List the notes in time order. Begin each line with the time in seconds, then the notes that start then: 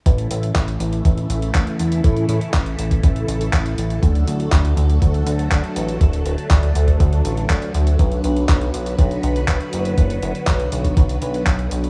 0.06 A1 C#3 E3 A3 E4 A4, kick, closed hi-hat
0.18 closed hi-hat
0.31 A1, closed hi-hat
0.43 closed hi-hat
0.55 A1, kick, clap, closed hi-hat
0.68 closed hi-hat
0.80 A1, closed hi-hat
0.93 closed hi-hat
1.05 A1, kick, closed hi-hat
1.18 closed hi-hat
1.30 A1, closed hi-hat
1.42 closed hi-hat
1.55 A1, kick, clap, closed hi-hat
1.67 closed hi-hat
1.79 E2, closed hi-hat
1.92 closed hi-hat
2.04 A2, kick, closed hi-hat
2.17 closed hi-hat
2.29 A2, closed hi-hat
2.41 closed hi-hat
2.54 A1, kick, clap, closed hi-hat
2.66 closed hi-hat
2.79 A1, closed hi-hat
2.91 kick, closed hi-hat
3.03 A1, kick, closed hi-hat
3.16 closed hi-hat
3.28 A1, closed hi-hat
3.41 closed hi-hat
3.53 A1, kick, clap, closed hi-hat
3.66 closed hi-hat
3.78 A1, closed hi-hat
3.90 closed hi-hat
4.03 D2 D3 F#3 A3 F#4, kick, closed hi-hat
4.15 closed hi-hat
4.27 D2, closed hi-hat
4.40 closed hi-hat
4.52 D2, kick, clap, closed hi-hat
4.65 closed hi-hat
4.77 D2, closed hi-hat
4.90 closed hi-hat
5.02 D2, kick, closed hi-hat
5.14 closed hi-hat
5.27 D2, closed hi-hat
5.39 closed hi-hat
5.51 D2, kick, clap, closed hi-hat
5.64 closed hi-hat
5.76 A1, closed hi-hat
5.88 closed hi-hat
6.01 D1, kick, closed hi-hat
6.13 closed hi-hat
6.26 D1, closed hi-hat
6.38 closed hi-hat
6.50 D2, kick, clap, closed hi-hat
6.63 closed hi-hat
6.75 D2, closed hi-hat
6.88 kick, closed hi-hat
7.00 D2, kick, closed hi-hat
7.13 closed hi-hat
7.25 A1, closed hi-hat
7.37 closed hi-hat
7.50 D2, kick, clap, closed hi-hat
7.62 closed hi-hat
7.75 D2, closed hi-hat
7.87 closed hi-hat
7.99 B1 B3 F#4 B4, kick, closed hi-hat
8.12 closed hi-hat
8.24 B1, closed hi-hat
8.36 closed hi-hat
8.49 B1, kick, clap, closed hi-hat
8.61 closed hi-hat
8.74 B1, closed hi-hat
8.86 closed hi-hat
8.98 B1, kick, closed hi-hat
9.11 closed hi-hat
9.23 B1, closed hi-hat
9.36 closed hi-hat
9.48 B1, kick, clap, closed hi-hat
9.61 closed hi-hat
9.73 F#1, closed hi-hat
9.85 closed hi-hat
9.98 F#1, kick, closed hi-hat
10.10 closed hi-hat
10.22 F#1, closed hi-hat
10.35 closed hi-hat
10.47 B1, kick, clap, closed hi-hat
10.60 closed hi-hat
10.72 B1, closed hi-hat
10.84 kick, closed hi-hat
10.97 B1, kick, closed hi-hat
11.09 closed hi-hat
11.22 B1, closed hi-hat
11.34 closed hi-hat
11.46 B1, kick, clap, closed hi-hat
11.59 closed hi-hat
11.71 B1, closed hi-hat
11.84 closed hi-hat